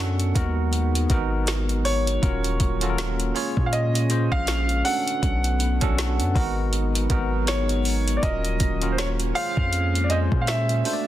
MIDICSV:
0, 0, Header, 1, 6, 480
1, 0, Start_track
1, 0, Tempo, 750000
1, 1425, Time_signature, 4, 2, 24, 8
1, 7085, End_track
2, 0, Start_track
2, 0, Title_t, "Grand piano"
2, 0, Program_c, 0, 0
2, 0, Note_on_c, 0, 78, 96
2, 921, Note_off_c, 0, 78, 0
2, 1183, Note_on_c, 0, 73, 95
2, 2344, Note_on_c, 0, 77, 70
2, 2382, Note_off_c, 0, 73, 0
2, 2384, Note_off_c, 0, 77, 0
2, 2385, Note_on_c, 0, 75, 94
2, 2764, Note_on_c, 0, 77, 108
2, 2776, Note_off_c, 0, 75, 0
2, 3081, Note_off_c, 0, 77, 0
2, 3102, Note_on_c, 0, 78, 105
2, 4785, Note_on_c, 0, 73, 95
2, 4834, Note_off_c, 0, 78, 0
2, 5228, Note_on_c, 0, 74, 70
2, 5241, Note_off_c, 0, 73, 0
2, 5266, Note_off_c, 0, 74, 0
2, 5267, Note_on_c, 0, 75, 96
2, 5708, Note_on_c, 0, 72, 64
2, 5722, Note_off_c, 0, 75, 0
2, 5746, Note_off_c, 0, 72, 0
2, 5748, Note_on_c, 0, 73, 91
2, 5802, Note_off_c, 0, 73, 0
2, 5985, Note_on_c, 0, 77, 109
2, 6425, Note_on_c, 0, 74, 68
2, 6441, Note_off_c, 0, 77, 0
2, 6463, Note_on_c, 0, 75, 89
2, 6464, Note_off_c, 0, 74, 0
2, 6509, Note_off_c, 0, 75, 0
2, 6665, Note_on_c, 0, 77, 75
2, 6704, Note_off_c, 0, 77, 0
2, 6705, Note_on_c, 0, 76, 94
2, 7085, Note_off_c, 0, 76, 0
2, 7085, End_track
3, 0, Start_track
3, 0, Title_t, "Tine electric piano"
3, 0, Program_c, 1, 4
3, 0, Control_c, 1, 64, 127
3, 0, Note_on_c, 1, 61, 75
3, 0, Note_on_c, 1, 62, 69
3, 0, Note_on_c, 1, 66, 69
3, 0, Note_on_c, 1, 69, 83
3, 221, Note_on_c, 1, 59, 92
3, 222, Note_off_c, 1, 61, 0
3, 223, Note_off_c, 1, 66, 0
3, 225, Note_off_c, 1, 62, 0
3, 226, Note_on_c, 1, 63, 86
3, 229, Note_off_c, 1, 69, 0
3, 230, Note_on_c, 1, 66, 89
3, 232, Control_c, 1, 64, 0
3, 234, Note_on_c, 1, 70, 101
3, 361, Control_c, 1, 64, 127
3, 623, Note_off_c, 1, 59, 0
3, 625, Note_off_c, 1, 63, 0
3, 627, Note_off_c, 1, 66, 0
3, 629, Note_off_c, 1, 70, 0
3, 701, Note_on_c, 1, 59, 89
3, 705, Note_on_c, 1, 63, 78
3, 709, Note_on_c, 1, 66, 77
3, 714, Note_on_c, 1, 70, 98
3, 1230, Note_off_c, 1, 59, 0
3, 1232, Note_off_c, 1, 63, 0
3, 1234, Note_off_c, 1, 66, 0
3, 1237, Note_off_c, 1, 70, 0
3, 1421, Note_on_c, 1, 61, 76
3, 1425, Note_on_c, 1, 65, 70
3, 1429, Note_on_c, 1, 66, 69
3, 1433, Control_c, 1, 64, 0
3, 1433, Note_on_c, 1, 70, 83
3, 1543, Control_c, 1, 64, 127
3, 1687, Note_off_c, 1, 61, 0
3, 1689, Note_off_c, 1, 65, 0
3, 1690, Note_off_c, 1, 66, 0
3, 1693, Note_off_c, 1, 70, 0
3, 1800, Note_on_c, 1, 61, 84
3, 1804, Note_on_c, 1, 65, 80
3, 1808, Note_on_c, 1, 66, 87
3, 1812, Note_on_c, 1, 69, 83
3, 1843, Note_off_c, 1, 69, 0
3, 1854, Note_on_c, 1, 70, 92
3, 2134, Note_off_c, 1, 61, 0
3, 2138, Note_off_c, 1, 65, 0
3, 2142, Note_on_c, 1, 61, 95
3, 2145, Note_on_c, 1, 65, 81
3, 2147, Note_off_c, 1, 66, 0
3, 2150, Note_on_c, 1, 68, 87
3, 2153, Control_c, 1, 64, 0
3, 2154, Note_on_c, 1, 73, 106
3, 2170, Note_off_c, 1, 70, 0
3, 2276, Control_c, 1, 64, 127
3, 2543, Note_off_c, 1, 61, 0
3, 2545, Note_off_c, 1, 65, 0
3, 2547, Note_off_c, 1, 68, 0
3, 2549, Note_off_c, 1, 73, 0
3, 2621, Note_on_c, 1, 61, 73
3, 2625, Note_on_c, 1, 65, 68
3, 2629, Note_on_c, 1, 68, 65
3, 2634, Note_on_c, 1, 72, 84
3, 3095, Note_off_c, 1, 61, 0
3, 3103, Note_on_c, 1, 61, 80
3, 3105, Note_off_c, 1, 65, 0
3, 3107, Note_off_c, 1, 68, 0
3, 3107, Note_on_c, 1, 62, 70
3, 3110, Note_off_c, 1, 72, 0
3, 3111, Note_on_c, 1, 66, 71
3, 3114, Control_c, 1, 64, 0
3, 3114, Note_on_c, 1, 69, 89
3, 3208, Control_c, 1, 64, 127
3, 3584, Note_off_c, 1, 61, 0
3, 3586, Note_off_c, 1, 62, 0
3, 3588, Note_off_c, 1, 66, 0
3, 3590, Note_off_c, 1, 69, 0
3, 3719, Note_on_c, 1, 61, 92
3, 3723, Note_on_c, 1, 62, 85
3, 3728, Note_on_c, 1, 66, 82
3, 3731, Note_on_c, 1, 69, 99
3, 4060, Note_on_c, 1, 59, 94
3, 4061, Note_off_c, 1, 66, 0
3, 4062, Note_off_c, 1, 61, 0
3, 4064, Note_on_c, 1, 63, 82
3, 4065, Note_off_c, 1, 62, 0
3, 4068, Note_on_c, 1, 66, 89
3, 4069, Note_off_c, 1, 69, 0
3, 4072, Control_c, 1, 64, 0
3, 4074, Note_on_c, 1, 70, 105
3, 4178, Control_c, 1, 64, 127
3, 4462, Note_off_c, 1, 59, 0
3, 4464, Note_off_c, 1, 63, 0
3, 4466, Note_off_c, 1, 66, 0
3, 4469, Note_off_c, 1, 70, 0
3, 4541, Note_on_c, 1, 59, 88
3, 4545, Note_on_c, 1, 63, 83
3, 4550, Note_on_c, 1, 66, 82
3, 4555, Note_on_c, 1, 70, 93
3, 5070, Note_off_c, 1, 59, 0
3, 5072, Note_off_c, 1, 63, 0
3, 5075, Note_off_c, 1, 66, 0
3, 5077, Note_off_c, 1, 70, 0
3, 5262, Note_on_c, 1, 61, 73
3, 5267, Note_on_c, 1, 65, 70
3, 5271, Note_on_c, 1, 66, 71
3, 5274, Control_c, 1, 64, 0
3, 5275, Note_on_c, 1, 70, 87
3, 5397, Control_c, 1, 64, 127
3, 5527, Note_off_c, 1, 61, 0
3, 5529, Note_off_c, 1, 65, 0
3, 5532, Note_off_c, 1, 66, 0
3, 5534, Note_off_c, 1, 70, 0
3, 5641, Note_on_c, 1, 61, 76
3, 5645, Note_on_c, 1, 65, 72
3, 5650, Note_on_c, 1, 66, 67
3, 5653, Note_on_c, 1, 70, 85
3, 5973, Note_off_c, 1, 61, 0
3, 5978, Note_off_c, 1, 65, 0
3, 5981, Note_on_c, 1, 61, 81
3, 5985, Note_on_c, 1, 65, 74
3, 5988, Note_off_c, 1, 66, 0
3, 5989, Note_on_c, 1, 68, 73
3, 5990, Note_off_c, 1, 70, 0
3, 5992, Control_c, 1, 64, 0
3, 5994, Note_on_c, 1, 72, 90
3, 6109, Control_c, 1, 64, 127
3, 6383, Note_off_c, 1, 61, 0
3, 6385, Note_off_c, 1, 65, 0
3, 6387, Note_off_c, 1, 68, 0
3, 6389, Note_off_c, 1, 72, 0
3, 6462, Note_on_c, 1, 61, 78
3, 6465, Note_on_c, 1, 65, 70
3, 6470, Note_on_c, 1, 68, 71
3, 6474, Note_on_c, 1, 72, 84
3, 6941, Note_on_c, 1, 62, 81
3, 6943, Note_off_c, 1, 61, 0
3, 6945, Note_off_c, 1, 65, 0
3, 6946, Note_off_c, 1, 72, 0
3, 6946, Note_on_c, 1, 66, 70
3, 6948, Note_off_c, 1, 68, 0
3, 6950, Note_on_c, 1, 69, 72
3, 6954, Control_c, 1, 64, 0
3, 6954, Note_on_c, 1, 72, 72
3, 6996, Note_on_c, 1, 74, 87
3, 6998, Note_off_c, 1, 72, 0
3, 7085, Note_off_c, 1, 62, 0
3, 7085, Note_off_c, 1, 66, 0
3, 7085, Note_off_c, 1, 69, 0
3, 7085, Note_off_c, 1, 74, 0
3, 7085, End_track
4, 0, Start_track
4, 0, Title_t, "Analog synth pad"
4, 0, Program_c, 2, 89
4, 0, Note_on_c, 2, 50, 92
4, 0, Note_on_c, 2, 57, 85
4, 0, Note_on_c, 2, 59, 79
4, 215, Note_off_c, 2, 50, 0
4, 215, Note_off_c, 2, 59, 0
4, 216, Note_off_c, 2, 57, 0
4, 227, Note_on_c, 2, 54, 75
4, 227, Note_on_c, 2, 56, 82
4, 228, Note_on_c, 2, 59, 92
4, 228, Note_on_c, 2, 63, 78
4, 1414, Note_off_c, 2, 56, 0
4, 1415, Note_off_c, 2, 59, 0
4, 1415, Note_off_c, 2, 63, 0
4, 1425, Note_on_c, 2, 51, 78
4, 1425, Note_on_c, 2, 58, 74
4, 1425, Note_on_c, 2, 61, 69
4, 2127, Note_off_c, 2, 54, 0
4, 2138, Note_off_c, 2, 51, 0
4, 2138, Note_off_c, 2, 61, 0
4, 2143, Note_on_c, 2, 56, 89
4, 2145, Note_on_c, 2, 61, 89
4, 3088, Note_off_c, 2, 58, 0
4, 3095, Note_off_c, 2, 56, 0
4, 3095, Note_off_c, 2, 61, 0
4, 3103, Note_on_c, 2, 59, 78
4, 3105, Note_on_c, 2, 50, 89
4, 3106, Note_on_c, 2, 57, 85
4, 4055, Note_off_c, 2, 50, 0
4, 4055, Note_off_c, 2, 59, 0
4, 4056, Note_off_c, 2, 57, 0
4, 4067, Note_on_c, 2, 63, 80
4, 4068, Note_on_c, 2, 54, 79
4, 4069, Note_on_c, 2, 56, 84
4, 4069, Note_on_c, 2, 59, 93
4, 5254, Note_off_c, 2, 63, 0
4, 5255, Note_off_c, 2, 56, 0
4, 5255, Note_off_c, 2, 59, 0
4, 5270, Note_on_c, 2, 51, 79
4, 5270, Note_on_c, 2, 58, 71
4, 5270, Note_on_c, 2, 61, 77
4, 5967, Note_off_c, 2, 54, 0
4, 5981, Note_off_c, 2, 51, 0
4, 5989, Note_on_c, 2, 56, 83
4, 6931, Note_off_c, 2, 58, 0
4, 6931, Note_off_c, 2, 61, 0
4, 6938, Note_off_c, 2, 56, 0
4, 6945, Note_on_c, 2, 57, 87
4, 6946, Note_on_c, 2, 59, 78
4, 6946, Note_on_c, 2, 62, 91
4, 7085, Note_off_c, 2, 57, 0
4, 7085, Note_off_c, 2, 59, 0
4, 7085, Note_off_c, 2, 62, 0
4, 7085, End_track
5, 0, Start_track
5, 0, Title_t, "808-style bass"
5, 0, Program_c, 3, 38
5, 0, Note_on_c, 3, 42, 110
5, 213, Note_off_c, 3, 42, 0
5, 228, Note_on_c, 3, 39, 96
5, 688, Note_off_c, 3, 39, 0
5, 704, Note_on_c, 3, 32, 101
5, 1399, Note_off_c, 3, 32, 0
5, 1426, Note_on_c, 3, 27, 118
5, 1656, Note_off_c, 3, 27, 0
5, 1666, Note_on_c, 3, 27, 102
5, 2127, Note_off_c, 3, 27, 0
5, 2286, Note_on_c, 3, 46, 99
5, 2746, Note_off_c, 3, 46, 0
5, 2764, Note_on_c, 3, 34, 102
5, 3092, Note_off_c, 3, 34, 0
5, 3347, Note_on_c, 3, 35, 107
5, 3710, Note_off_c, 3, 35, 0
5, 3726, Note_on_c, 3, 35, 111
5, 3967, Note_on_c, 3, 42, 98
5, 3977, Note_off_c, 3, 35, 0
5, 4062, Note_off_c, 3, 42, 0
5, 4068, Note_on_c, 3, 32, 101
5, 4528, Note_off_c, 3, 32, 0
5, 4544, Note_on_c, 3, 32, 106
5, 5239, Note_off_c, 3, 32, 0
5, 5267, Note_on_c, 3, 27, 116
5, 5497, Note_off_c, 3, 27, 0
5, 5507, Note_on_c, 3, 27, 101
5, 5967, Note_off_c, 3, 27, 0
5, 6126, Note_on_c, 3, 41, 102
5, 6586, Note_off_c, 3, 41, 0
5, 6604, Note_on_c, 3, 46, 100
5, 6932, Note_off_c, 3, 46, 0
5, 7085, End_track
6, 0, Start_track
6, 0, Title_t, "Drums"
6, 125, Note_on_c, 9, 42, 55
6, 189, Note_off_c, 9, 42, 0
6, 227, Note_on_c, 9, 36, 109
6, 228, Note_on_c, 9, 42, 69
6, 291, Note_off_c, 9, 36, 0
6, 292, Note_off_c, 9, 42, 0
6, 465, Note_on_c, 9, 42, 67
6, 529, Note_off_c, 9, 42, 0
6, 610, Note_on_c, 9, 42, 70
6, 674, Note_off_c, 9, 42, 0
6, 702, Note_on_c, 9, 42, 49
6, 703, Note_on_c, 9, 36, 90
6, 766, Note_off_c, 9, 42, 0
6, 767, Note_off_c, 9, 36, 0
6, 942, Note_on_c, 9, 42, 62
6, 947, Note_on_c, 9, 38, 111
6, 1006, Note_off_c, 9, 42, 0
6, 1011, Note_off_c, 9, 38, 0
6, 1083, Note_on_c, 9, 42, 38
6, 1147, Note_off_c, 9, 42, 0
6, 1184, Note_on_c, 9, 46, 60
6, 1248, Note_off_c, 9, 46, 0
6, 1327, Note_on_c, 9, 42, 54
6, 1391, Note_off_c, 9, 42, 0
6, 1425, Note_on_c, 9, 36, 117
6, 1426, Note_on_c, 9, 42, 65
6, 1489, Note_off_c, 9, 36, 0
6, 1490, Note_off_c, 9, 42, 0
6, 1564, Note_on_c, 9, 42, 52
6, 1628, Note_off_c, 9, 42, 0
6, 1663, Note_on_c, 9, 42, 67
6, 1665, Note_on_c, 9, 36, 92
6, 1727, Note_off_c, 9, 42, 0
6, 1729, Note_off_c, 9, 36, 0
6, 1800, Note_on_c, 9, 42, 58
6, 1864, Note_off_c, 9, 42, 0
6, 1910, Note_on_c, 9, 42, 77
6, 1911, Note_on_c, 9, 38, 111
6, 1974, Note_off_c, 9, 42, 0
6, 1975, Note_off_c, 9, 38, 0
6, 2045, Note_on_c, 9, 42, 55
6, 2109, Note_off_c, 9, 42, 0
6, 2148, Note_on_c, 9, 46, 45
6, 2212, Note_off_c, 9, 46, 0
6, 2285, Note_on_c, 9, 36, 95
6, 2349, Note_off_c, 9, 36, 0
6, 2386, Note_on_c, 9, 42, 67
6, 2450, Note_off_c, 9, 42, 0
6, 2530, Note_on_c, 9, 42, 67
6, 2594, Note_off_c, 9, 42, 0
6, 2622, Note_on_c, 9, 42, 51
6, 2686, Note_off_c, 9, 42, 0
6, 2763, Note_on_c, 9, 36, 98
6, 2827, Note_off_c, 9, 36, 0
6, 2862, Note_on_c, 9, 42, 66
6, 2867, Note_on_c, 9, 38, 116
6, 2926, Note_off_c, 9, 42, 0
6, 2931, Note_off_c, 9, 38, 0
6, 3002, Note_on_c, 9, 42, 43
6, 3066, Note_off_c, 9, 42, 0
6, 3104, Note_on_c, 9, 46, 63
6, 3168, Note_off_c, 9, 46, 0
6, 3248, Note_on_c, 9, 42, 56
6, 3312, Note_off_c, 9, 42, 0
6, 3345, Note_on_c, 9, 36, 118
6, 3346, Note_on_c, 9, 42, 69
6, 3409, Note_off_c, 9, 36, 0
6, 3410, Note_off_c, 9, 42, 0
6, 3483, Note_on_c, 9, 42, 52
6, 3547, Note_off_c, 9, 42, 0
6, 3584, Note_on_c, 9, 42, 70
6, 3648, Note_off_c, 9, 42, 0
6, 3720, Note_on_c, 9, 42, 60
6, 3725, Note_on_c, 9, 36, 102
6, 3784, Note_off_c, 9, 42, 0
6, 3789, Note_off_c, 9, 36, 0
6, 3830, Note_on_c, 9, 42, 82
6, 3831, Note_on_c, 9, 38, 110
6, 3894, Note_off_c, 9, 42, 0
6, 3895, Note_off_c, 9, 38, 0
6, 3966, Note_on_c, 9, 42, 56
6, 4030, Note_off_c, 9, 42, 0
6, 4067, Note_on_c, 9, 36, 113
6, 4068, Note_on_c, 9, 46, 48
6, 4131, Note_off_c, 9, 36, 0
6, 4132, Note_off_c, 9, 46, 0
6, 4305, Note_on_c, 9, 42, 68
6, 4369, Note_off_c, 9, 42, 0
6, 4451, Note_on_c, 9, 42, 65
6, 4515, Note_off_c, 9, 42, 0
6, 4543, Note_on_c, 9, 36, 88
6, 4543, Note_on_c, 9, 42, 48
6, 4607, Note_off_c, 9, 36, 0
6, 4607, Note_off_c, 9, 42, 0
6, 4783, Note_on_c, 9, 42, 67
6, 4788, Note_on_c, 9, 38, 120
6, 4847, Note_off_c, 9, 42, 0
6, 4852, Note_off_c, 9, 38, 0
6, 4924, Note_on_c, 9, 42, 41
6, 4988, Note_off_c, 9, 42, 0
6, 5025, Note_on_c, 9, 46, 65
6, 5089, Note_off_c, 9, 46, 0
6, 5168, Note_on_c, 9, 42, 51
6, 5232, Note_off_c, 9, 42, 0
6, 5266, Note_on_c, 9, 36, 120
6, 5267, Note_on_c, 9, 42, 65
6, 5330, Note_off_c, 9, 36, 0
6, 5331, Note_off_c, 9, 42, 0
6, 5405, Note_on_c, 9, 42, 53
6, 5469, Note_off_c, 9, 42, 0
6, 5504, Note_on_c, 9, 42, 72
6, 5506, Note_on_c, 9, 36, 91
6, 5568, Note_off_c, 9, 42, 0
6, 5570, Note_off_c, 9, 36, 0
6, 5642, Note_on_c, 9, 42, 56
6, 5706, Note_off_c, 9, 42, 0
6, 5750, Note_on_c, 9, 42, 81
6, 5751, Note_on_c, 9, 38, 109
6, 5814, Note_off_c, 9, 42, 0
6, 5815, Note_off_c, 9, 38, 0
6, 5885, Note_on_c, 9, 42, 55
6, 5949, Note_off_c, 9, 42, 0
6, 5987, Note_on_c, 9, 46, 45
6, 6051, Note_off_c, 9, 46, 0
6, 6125, Note_on_c, 9, 36, 102
6, 6189, Note_off_c, 9, 36, 0
6, 6225, Note_on_c, 9, 42, 66
6, 6289, Note_off_c, 9, 42, 0
6, 6371, Note_on_c, 9, 42, 68
6, 6435, Note_off_c, 9, 42, 0
6, 6463, Note_on_c, 9, 42, 50
6, 6527, Note_off_c, 9, 42, 0
6, 6604, Note_on_c, 9, 36, 103
6, 6668, Note_off_c, 9, 36, 0
6, 6703, Note_on_c, 9, 42, 64
6, 6708, Note_on_c, 9, 38, 115
6, 6767, Note_off_c, 9, 42, 0
6, 6772, Note_off_c, 9, 38, 0
6, 6844, Note_on_c, 9, 42, 40
6, 6908, Note_off_c, 9, 42, 0
6, 6946, Note_on_c, 9, 46, 63
6, 7010, Note_off_c, 9, 46, 0
6, 7085, End_track
0, 0, End_of_file